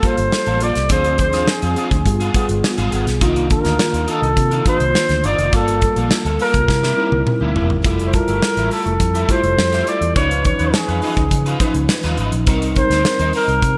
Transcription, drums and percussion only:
0.03 kick medium
0.03 closed hi-hat medium
0.18 closed hi-hat soft
0.32 snare loud
0.46 closed hi-hat soft
0.60 closed hi-hat medium
0.75 snare soft
0.75 closed hi-hat soft
0.89 kick loud
0.89 closed hi-hat medium
1.04 closed hi-hat soft
1.18 kick medium
1.18 closed hi-hat medium
1.33 snare soft
1.33 closed hi-hat soft
1.48 snare medium
1.62 closed hi-hat soft
1.76 closed hi-hat medium
1.91 kick medium
1.91 closed hi-hat soft
2.06 kick medium
2.06 closed hi-hat medium
2.20 closed hi-hat soft
2.34 kick medium
2.34 closed hi-hat medium
2.49 closed hi-hat soft
2.64 snare loud
2.78 closed hi-hat soft
2.92 closed hi-hat medium
3.07 snare soft
3.07 closed hi-hat medium
3.21 kick loud
3.21 closed hi-hat medium
3.36 closed hi-hat medium
3.50 kick medium
3.50 closed hi-hat medium
3.65 snare soft
3.65 closed hi-hat soft
3.79 snare loud
3.94 closed hi-hat soft
4.08 closed hi-hat medium
4.23 closed hi-hat soft
4.37 kick medium
4.37 closed hi-hat medium
4.51 closed hi-hat soft
4.66 kick medium
4.66 closed hi-hat medium
4.80 closed hi-hat soft
4.95 snare medium
5.09 snare soft
5.09 closed hi-hat soft
5.24 closed hi-hat medium
5.39 closed hi-hat medium
5.53 kick loud
5.53 closed hi-hat medium
5.68 closed hi-hat medium
5.81 kick medium
5.81 closed hi-hat medium
5.96 closed hi-hat soft
6.11 snare loud
6.26 closed hi-hat soft
6.39 open hi-hat medium
6.54 kick medium
6.54 closed hi-hat soft
6.68 kick medium
6.68 snare medium
6.84 snare soft
7.12 high tom medium
7.27 mid tom medium
7.56 floor tom medium
7.70 floor tom medium
7.84 kick loud
7.84 closed hi-hat medium
7.99 closed hi-hat medium
8.13 kick medium
8.13 closed hi-hat medium
8.28 closed hi-hat soft
8.42 snare loud
8.57 closed hi-hat soft
8.71 open hi-hat medium
8.87 closed hi-hat soft
9.00 kick medium
9.00 closed hi-hat medium
9.15 closed hi-hat soft
9.29 kick medium
9.29 closed hi-hat medium
9.44 closed hi-hat soft
9.59 snare loud
9.73 snare soft
9.73 closed hi-hat soft
9.87 closed hi-hat medium
10.02 closed hi-hat medium
10.16 kick loud
10.16 closed hi-hat medium
10.31 closed hi-hat medium
10.45 kick medium
10.45 closed hi-hat medium
10.59 closed hi-hat soft
10.74 snare loud
10.89 closed hi-hat soft
11.02 open hi-hat medium
11.17 kick medium
11.17 closed hi-hat soft
11.31 kick medium
11.31 closed hi-hat medium
11.46 closed hi-hat soft
11.60 kick medium
11.60 closed hi-hat medium
11.74 closed hi-hat medium
11.89 snare loud
12.03 snare soft
12.03 closed hi-hat soft
12.17 closed hi-hat medium
12.32 closed hi-hat soft
12.47 kick loud
12.47 closed hi-hat medium
12.62 closed hi-hat medium
12.76 kick medium
12.76 closed hi-hat medium
12.91 snare soft
12.91 closed hi-hat soft
13.05 snare loud
13.19 closed hi-hat soft
13.33 open hi-hat medium
13.49 closed hi-hat soft
13.62 kick medium
13.62 closed hi-hat medium

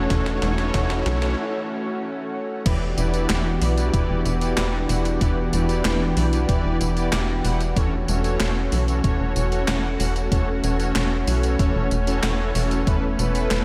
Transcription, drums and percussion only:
0.10 kick loud
0.10 snare medium
0.10 closed hi-hat loud
0.26 snare medium
0.26 closed hi-hat soft
0.42 snare medium
0.42 closed hi-hat medium
0.58 snare medium
0.58 closed hi-hat soft
0.74 kick medium
0.74 snare loud
0.74 closed hi-hat medium
0.90 snare medium
0.90 closed hi-hat soft
1.06 snare medium
1.06 closed hi-hat medium
1.22 snare medium
1.22 closed hi-hat soft
2.66 kick loud
2.66 closed hi-hat loud
2.66 crash loud
2.66 tambourine soft
2.98 closed hi-hat medium
2.98 tambourine medium
3.14 closed hi-hat medium
3.14 tambourine soft
3.30 snare loud
3.30 clap loud
3.30 closed hi-hat loud
3.30 tambourine soft
3.62 open hi-hat medium
3.62 tambourine medium
3.78 closed hi-hat medium
3.78 tambourine soft
3.94 kick loud
3.94 closed hi-hat loud
3.94 tambourine soft
4.25 closed hi-hat medium
4.25 tambourine medium
4.41 closed hi-hat medium
4.41 tambourine soft
4.57 snare loud
4.57 clap loud
4.57 closed hi-hat loud
4.57 tambourine soft
4.89 open hi-hat medium
4.89 tambourine medium
5.05 closed hi-hat medium
5.05 tambourine soft
5.21 kick loud
5.21 closed hi-hat loud
5.21 tambourine soft
5.53 closed hi-hat medium
5.53 tambourine medium
5.69 closed hi-hat medium
5.69 tambourine soft
5.85 snare loud
5.85 clap loud
5.85 closed hi-hat loud
5.85 tambourine soft
6.17 open hi-hat medium
6.17 tambourine medium
6.33 closed hi-hat medium
6.33 tambourine soft
6.49 kick loud
6.49 closed hi-hat loud
6.49 tambourine soft
6.81 closed hi-hat medium
6.81 tambourine medium
6.97 closed hi-hat medium
6.97 tambourine soft
7.13 snare loud
7.13 clap loud
7.13 closed hi-hat loud
7.13 tambourine soft
7.45 open hi-hat medium
7.45 tambourine medium
7.61 closed hi-hat medium
7.61 tambourine soft
7.76 kick loud
7.76 closed hi-hat loud
7.76 tambourine soft
8.08 closed hi-hat medium
8.08 tambourine medium
8.24 closed hi-hat medium
8.24 tambourine soft
8.40 snare loud
8.40 clap loud
8.40 closed hi-hat medium
8.40 tambourine soft
8.72 open hi-hat medium
8.72 tambourine medium
8.88 closed hi-hat medium
8.88 tambourine soft
9.04 kick loud
9.04 closed hi-hat medium
9.04 tambourine soft
9.36 closed hi-hat medium
9.36 tambourine medium
9.52 closed hi-hat medium
9.52 tambourine soft
9.68 snare loud
9.68 clap loud
9.68 closed hi-hat loud
9.68 tambourine soft
10.00 open hi-hat medium
10.00 tambourine medium
10.16 closed hi-hat medium
10.16 tambourine soft
10.32 kick loud
10.32 closed hi-hat loud
10.32 tambourine soft
10.64 closed hi-hat medium
10.64 tambourine medium
10.80 closed hi-hat medium
10.80 tambourine soft
10.96 snare loud
10.96 clap medium
10.96 closed hi-hat medium
10.96 tambourine soft
11.27 open hi-hat medium
11.27 tambourine medium
11.43 closed hi-hat medium
11.43 tambourine soft
11.59 kick loud
11.59 closed hi-hat loud
11.59 tambourine soft
11.91 closed hi-hat medium
11.91 tambourine medium
12.07 closed hi-hat medium
12.07 tambourine soft
12.23 snare loud
12.23 clap loud
12.23 closed hi-hat loud
12.23 tambourine soft
12.55 open hi-hat medium
12.55 tambourine medium
12.71 closed hi-hat medium
12.71 tambourine soft
12.87 kick loud
12.87 closed hi-hat medium
12.87 tambourine soft
13.19 closed hi-hat medium
13.19 tambourine medium
13.35 closed hi-hat medium
13.35 tambourine soft
13.51 snare loud
13.51 clap medium
13.51 closed hi-hat medium
13.51 tambourine soft

